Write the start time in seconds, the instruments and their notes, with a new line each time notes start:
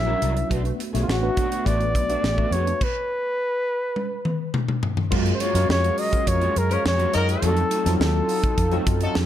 Already playing: fingered electric bass A#1, tine electric piano F#3 C#4 D4 E4 F#4 A#4, flugelhorn E5
0.06 tine electric piano F#3 C#4 D4 E4 A#4, clean electric guitar D4 E4 A#4
0.21 fingered electric bass C2, clean electric guitar D4 E4 A#4, closed hi-hat
0.36 muted clean electric guitar stroke, closed hi-hat
0.49 fingered electric bass B1, clean electric guitar A3 D4 F#4, tine electric piano A3 B3 D4 F#4 B4, kick, closed hi-hat
0.64 muted clean electric guitar stroke, closed hi-hat
0.78 muted clean electric guitar stroke, closed hi-hat
0.93 fingered electric bass B1, tine electric piano A3 B3 D4 F#4 C#5, clean electric guitar A3 D4 G#4, snare, closed hi-hat
1.03 flugelhorn F4
1.08 fingered electric bass A1, flugelhorn F#4, muted clean electric guitar stroke, snare
1.22 tine electric piano A3 B3 D4 F#4 B4, muted clean electric guitar stroke
1.36 clean electric guitar A3 D4 F#4, kick, closed hi-hat
1.51 clean electric guitar A3 D4 F#4, closed hi-hat
1.65 fingered electric bass A1, tine electric piano A3 B3 D4 F#4 B4, clean electric guitar A3 D4 F#4, flugelhorn D5, kick, closed hi-hat
1.81 muted clean electric guitar stroke, closed hi-hat
1.95 fingered electric bass B1, muted clean electric guitar stroke, kick, closed hi-hat
2.09 tine electric piano A3 B3 D4 F#4 D5, clean electric guitar A3 D4 F#4, closed hi-hat
2.24 fingered electric bass A1, muted clean electric guitar stroke, snare
2.38 tine electric piano A3 B3 D4 F#4 B4, clean electric guitar A3 D4 F#4, kick
2.51 fingered electric bass F2, clean electric guitar A3 D4 G#4, flugelhorn C#5, closed hi-hat
2.67 muted clean electric guitar stroke, closed hi-hat
2.81 flugelhorn B4, kick, crash
3.96 high tom
4.25 mid tom
4.54 mid tom
4.68 mid tom
4.83 floor tom
4.97 floor tom
5.11 fingered electric bass F#2, analog synth pad F#3 G#4 A#4 F5, tine electric piano G#3 C#4 F4 F#4 A#4, clean electric guitar G#3 A#3 F4, kick, crash
5.26 closed hi-hat
5.34 flugelhorn C5
5.40 clean electric guitar G#3 A#3 F4, flugelhorn C#5, closed hi-hat
5.54 fingered electric bass F#2, tine electric piano G#3 C#4 F4 F#4 A#4, clean electric guitar G#3 A#3 F4, snare, closed hi-hat
5.69 fingered electric bass F2, flugelhorn C#5, muted clean electric guitar stroke, snare
5.83 muted clean electric guitar stroke, closed hi-hat
5.98 flugelhorn D#5, open hi-hat
6.11 tine electric piano G#3 C#4 F4 F#4 A#4, muted clean electric guitar stroke, kick, closed hi-hat
6.27 fingered electric bass F2, flugelhorn C#5, muted clean electric guitar stroke, kick, closed hi-hat
6.40 clean electric guitar G#3 A#3 F4, closed hi-hat
6.55 fingered electric bass F#2, flugelhorn A#4, muted clean electric guitar stroke, closed hi-hat
6.70 horn section F3 C#4 A#4, flugelhorn C#5, muted clean electric guitar stroke, closed hi-hat
6.84 fingered electric bass F2, flugelhorn C#5, muted clean electric guitar stroke, snare
6.98 clean electric guitar G#3 A#3 F#4, closed hi-hat
7.13 fingered electric bass F#2, horn section F#3 D#4 A#4, flugelhorn A#4, muted clean electric guitar stroke, closed hi-hat
7.27 muted clean electric guitar stroke, closed hi-hat
7.42 fingered electric bass F2, tine electric piano F#3 C4 D#4 F4 A4, analog synth pad F#3 D#4 F4 A4, clean electric guitar A3 D#4 F#4, flugelhorn A4, closed hi-hat
7.57 closed hi-hat
7.70 clean electric guitar A3 D#4 F#4, closed hi-hat
7.85 fingered electric bass F2, tine electric piano F#3 C4 D#4 F4 A4, clean electric guitar A3 D#4 A4, snare, closed hi-hat
7.99 fingered electric bass D#2, flugelhorn A4, muted clean electric guitar stroke, snare
8.14 muted clean electric guitar stroke
8.29 open hi-hat
8.43 muted clean electric guitar stroke, kick, closed hi-hat
8.57 fingered electric bass F2, muted clean electric guitar stroke, kick, closed hi-hat
8.71 tine electric piano F#3 C4 D#4 F4 A4, clean electric guitar A3 D#4 F#4, closed hi-hat
8.86 fingered electric bass F#2, muted clean electric guitar stroke, kick, closed hi-hat
9.01 horn section F#3 D#4 A4, muted clean electric guitar stroke, closed hi-hat
9.15 fingered electric bass F2, muted clean electric guitar stroke, snare